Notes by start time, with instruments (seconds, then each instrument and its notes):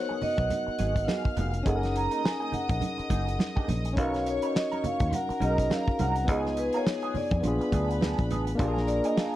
Already playing: tine electric piano B3 D#4 F#4 A#4, vibraphone C#5, string section F#5 F#6
0.09 clean electric guitar B3 F#4 G#4, muted conga
0.21 vibraphone D#5, muted clean electric guitar stroke, muted fingered electric bass stroke, open hi-hat, low conga
0.37 fingered electric bass B1, muted clean electric guitar stroke, kick, closed hi-hat
0.50 closed hi-hat, high conga, low conga
0.67 muted clean electric guitar stroke, muted fingered electric bass stroke
0.79 fingered electric bass G#1, clean electric guitar B3 F#4 G#4, closed hi-hat, high conga
0.96 muted clean electric guitar stroke, kick, closed hi-hat
1.07 clean electric guitar B3 F#4 G#4, string section F5 F6, snare, muted conga, high conga
1.24 muted clean electric guitar stroke, kick, muted conga
1.36 fingered electric bass F1, clean electric guitar B3 F#4 G#4, closed hi-hat, high conga, low conga
1.54 closed hi-hat
1.63 fingered electric bass F#1, clean electric guitar A#3 D#4 G#4, tine electric piano C#4 D#4, string section D#5 D#6, kick, closed hi-hat
1.67 tine electric piano G#4 A4, vibraphone F#5
1.76 tine electric piano A#4
1.82 muted clean electric guitar stroke, snare, closed hi-hat
1.94 vibraphone A#5, muted clean electric guitar stroke, closed hi-hat
2.11 clean electric guitar A#3 D#4 A#4, closed hi-hat
2.23 vibraphone G#5, muted clean electric guitar stroke, snare, muted conga
2.40 clean electric guitar A#3 D#4 G#4
2.52 vibraphone F#5, muted clean electric guitar stroke, muted fingered electric bass stroke, closed hi-hat, low conga
2.69 fingered electric bass A#1, muted clean electric guitar stroke, kick, closed hi-hat
2.81 closed hi-hat, muted conga, high conga, low conga
2.98 muted clean electric guitar stroke, muted fingered electric bass stroke, closed hi-hat, muted conga
3.10 fingered electric bass F#1, clean electric guitar A#3 D#4 G#4, kick, closed hi-hat, high conga
3.27 muted clean electric guitar stroke, closed hi-hat
3.39 muted clean electric guitar stroke, snare, high conga
3.55 clean electric guitar A#3 D#4 G#4, kick, muted conga
3.68 fingered electric bass A#1, muted clean electric guitar stroke, closed hi-hat, high conga, low conga
3.85 muted clean electric guitar stroke, closed hi-hat
3.93 tine electric piano C#4 D#4, clean electric guitar C#4, string section C#5 C#6, kick, muted conga
3.97 fingered electric bass B1, clean electric guitar D#4 A#4, tine electric piano F#4 A#4, vibraphone F5, closed hi-hat
4.14 muted clean electric guitar stroke, snare, closed hi-hat
4.26 vibraphone C#5, muted clean electric guitar stroke, closed hi-hat
4.42 clean electric guitar C#4 D#4 B4, closed hi-hat
4.55 vibraphone D#5, muted clean electric guitar stroke, snare, muted conga
4.72 clean electric guitar C#4 D#4 A#4, closed hi-hat, muted conga
4.84 vibraphone F5, muted clean electric guitar stroke, muted fingered electric bass stroke, closed hi-hat, low conga
5.00 fingered electric bass D#2, muted clean electric guitar stroke, kick, closed hi-hat
5.11 string section A#4 A#5, vibraphone F#5, closed hi-hat, high conga, low conga
5.29 muted clean electric guitar stroke, muted fingered electric bass stroke, closed hi-hat, muted conga
5.40 fingered electric bass B1, tine electric piano C#4 D#4 F#4 G#4, clean electric guitar C#4 D#4 A#4, vibraphone D#5, closed hi-hat, high conga
5.50 tine electric piano A#4
5.58 muted clean electric guitar stroke, kick, closed hi-hat
5.70 clean electric guitar C#4 D#4 A#4, vibraphone F5, snare, muted conga, high conga
5.87 muted clean electric guitar stroke, kick, muted conga
5.99 fingered electric bass C2, clean electric guitar C#4 D#4 A#4, vibraphone F#5, closed hi-hat, high conga, low conga
6.16 muted clean electric guitar stroke, closed hi-hat
6.25 fingered electric bass C#2, tine electric piano B3 D#4, clean electric guitar B3 F4, string section G#4 G#5, kick, closed hi-hat
6.29 tine electric piano F4 G#4, clean electric guitar G#4, vibraphone D#5
6.45 muted clean electric guitar stroke, snare, muted conga
6.57 vibraphone B4, muted clean electric guitar stroke, closed hi-hat
6.73 clean electric guitar B3 F4 A#4, vibraphone C#5, closed hi-hat
6.86 muted clean electric guitar stroke, snare, muted conga
7.02 clean electric guitar B3 F4 G#4, closed hi-hat
7.14 vibraphone D5, muted clean electric guitar stroke, muted fingered electric bass stroke, open hi-hat, low conga
7.31 fingered electric bass F2, muted clean electric guitar stroke, kick, closed hi-hat
7.41 fingered electric bass A#1, tine electric piano B3 D4 F4, string section B4 B5, closed hi-hat, muted conga, high conga, low conga
7.47 tine electric piano G#4
7.61 muted fingered electric bass stroke, muted clean electric guitar stroke, closed hi-hat
7.72 fingered electric bass D2, clean electric guitar B3 D4 G#4, kick, closed hi-hat, high conga
7.90 muted clean electric guitar stroke, closed hi-hat
8.01 clean electric guitar B3 D4 G#4, snare, high conga
8.18 fingered electric bass A#1, muted clean electric guitar stroke, kick, closed hi-hat, muted conga
8.31 fingered electric bass A1, clean electric guitar B3 D4 G#4, closed hi-hat, high conga, low conga
8.47 muted clean electric guitar stroke, closed hi-hat
8.55 tine electric piano A#3 D4, string section A#4
8.59 fingered electric bass A#1, clean electric guitar A#3 D4 G#4, tine electric piano F4 G4, string section A#5, kick, closed hi-hat
8.68 tine electric piano G#4
8.76 muted clean electric guitar stroke, snare, muted conga
8.88 vibraphone D5, muted clean electric guitar stroke, closed hi-hat
9.04 clean electric guitar A#3 D4 G#4, vibraphone D#5, closed hi-hat
9.17 clean electric guitar A#3 D4 G#4, vibraphone F5, snare, muted conga